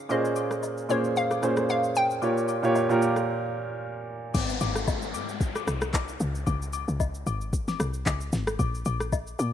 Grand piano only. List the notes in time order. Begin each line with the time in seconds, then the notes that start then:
Already playing: C#3 C#4 D#4 F4 A#4 C5
0.09 A#2 A#3 C#4 G#4 C5
0.89 A#2 A#3 C#4 G#4 C5
1.42 A#2 A#3 C#4 G#4 C5
2.21 A#2 A#3 F4 G4 C#5
2.63 A#2 A#3 F4 G4 C#5
2.89 A#2 A#3 F4 G4 A#4